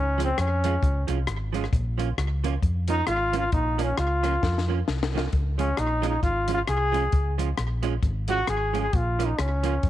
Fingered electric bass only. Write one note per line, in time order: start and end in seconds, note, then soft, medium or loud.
0.00 0.31 C#2 loud
0.38 0.76 F2 loud
0.83 1.05 C#2 loud
1.09 1.25 C2 medium
1.28 1.66 G#1 medium
1.73 2.11 A#1 loud
2.18 2.56 C#2 medium
2.63 3.01 F2 loud
3.08 3.46 G#1 loud
3.53 3.91 A#1 loud
3.98 4.36 C#2 loud
4.43 4.81 F2 loud
4.88 5.26 C2 medium
5.33 5.71 C#2 loud
5.79 6.17 A#1 loud
6.23 6.61 G#1 medium
6.69 7.07 C2 medium
7.13 7.51 C#2 loud
7.59 7.97 A#1 loud
8.03 8.41 G#1 loud
8.48 8.87 G#1 medium
8.94 9.32 A#1 loud
9.39 9.77 C#2 loud
9.84 9.90 F2 loud